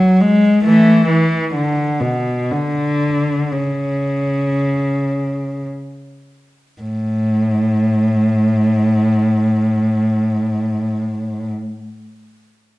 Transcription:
Already playing: F#3
0.21 G#3
0.64 E3 A3
1.07 E3
1.55 D3
2.00 B2
2.51 D3
3.52 C#3
6.82 A2

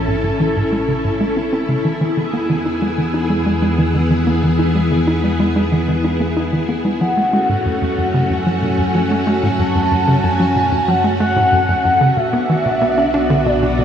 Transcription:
Already playing: A1 C#4 E4 A4
0.08 A2
0.24 A2
0.40 E3
0.56 A2
0.72 A3
0.88 C#3
1.05 A2
1.21 A3
1.37 C#4
1.53 C#4
1.69 C#3
1.85 E2 E3 B3 G#4
2.01 E3
2.17 E3
2.33 B3
2.50 E3
2.66 E4
2.82 G#3
2.98 E3
3.14 E4
3.30 G#3
3.46 G#3
3.62 G#3
3.78 E3
3.94 E3
4.11 E3
4.27 B3
4.43 E3
4.59 E4
4.75 G#3
4.91 E3
5.07 E4
5.24 G#3
5.40 G#3
5.56 G#3
5.72 E3
5.88 E3
6.04 E4
6.20 B3
6.37 E4
6.53 E3
6.69 B3
6.85 G#3
7.01 F#2 F#3 A3 C#4 F#4 F#5
7.17 A3
7.33 A3
7.49 A2
7.66 F#2
7.82 F#2
7.98 F#2
8.14 C#3
8.30 F#2 G#5
8.46 F#3
8.62 B2
8.79 F#2
8.95 F#3
9.11 A3
9.27 A3
9.43 A2
9.59 F#2 A5
9.75 F#2
9.91 F#2
10.08 C#3
10.24 F#2 G#5
10.40 F#3
10.56 B2
10.72 F#2
10.88 F#3 F#5
11.04 A3
11.20 A3 F#5
11.36 A2
11.53 F#2
11.69 F#2
11.85 F#2
12.01 C#3
12.17 B1 B2 B3 D4 F#4 E5
12.33 B3
12.50 E3
12.66 B2
12.82 B3
12.98 D4
13.14 D4
13.30 D3
13.46 B2 D5
13.63 B2
13.79 B2

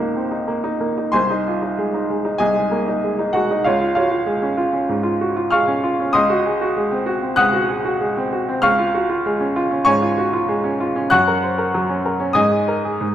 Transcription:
Already playing: C#2 D#4 F4 G4 D#5 G5
0.00 A#3
0.16 C4
0.31 D#4
0.48 A#3
0.64 D#4
0.81 A#3
0.98 D#4
1.12 C2 C5 G#5 C6
1.30 D#4
1.48 F4
1.62 D#4
1.78 G#3
1.94 D#4
2.10 G#3
2.25 D#4
2.38 C2 G#4 D#5 G#5
2.56 G#3
2.71 A#3
2.88 D#4
3.04 G#3
3.19 D#4
3.33 G#3 F#4 F#5
3.51 D#4
3.64 C#2 F4 C#5 F5
3.81 F4
3.95 F4 F#4 C#5 F5
4.11 F4
4.26 G#3
4.42 C#4
4.57 F4
4.73 C#4
4.89 G#2
5.03 F4
5.21 F#4
5.36 F4
5.50 G#3 F5 C#6 F6
5.68 C#4
5.83 F4
6.00 C#4
6.13 C#2 D#5 C6 D#6
6.30 F#4
6.46 G#4
6.61 F#4
6.77 G#3
6.91 C4
7.06 F#4
7.22 C4
7.36 C#2 F#5 D#6 F#6
7.53 F#4
7.69 G#4
7.85 F#4
8.01 G#3
8.17 C4
8.32 F#4
8.49 C4
8.62 C#2 F5 C#6 F6
8.79 F4
8.94 F#4
9.09 F4
9.26 G#3
9.40 C#4
9.56 F4
9.71 C#4
9.85 G#2 C#5 G#5 C#6
10.02 F4
10.18 F#4
10.33 F4
10.49 G#3
10.64 C#4
10.80 F4
10.96 C#4
11.10 F#2 F#5 C#6 F#6
11.27 A#4
11.43 C5
11.58 A#4
11.74 F#3
11.89 C#4
12.05 A#4
12.20 C#4
12.33 G#2 D#5 G#5 D#6
12.52 G#4
12.68 A#4
12.85 G#4
13.01 G#2

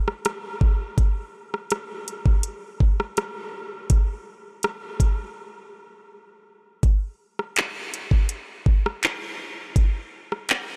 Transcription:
0.08 cross-stick
0.25 cross-stick, closed hi-hat
0.61 kick
0.98 kick, closed hi-hat
1.54 cross-stick
1.70 cross-stick, closed hi-hat
2.08 closed hi-hat
2.26 kick
2.43 closed hi-hat
2.80 kick
3.00 cross-stick
3.17 cross-stick, closed hi-hat
3.90 kick, closed hi-hat
4.63 cross-stick, closed hi-hat
5.00 kick, closed hi-hat
6.83 kick, closed hi-hat
7.39 cross-stick
7.56 clap, closed hi-hat
7.94 closed hi-hat
8.11 kick
8.29 closed hi-hat
8.66 kick
8.86 cross-stick
9.03 clap, closed hi-hat
9.76 kick, closed hi-hat
10.32 cross-stick
10.49 clap, closed hi-hat

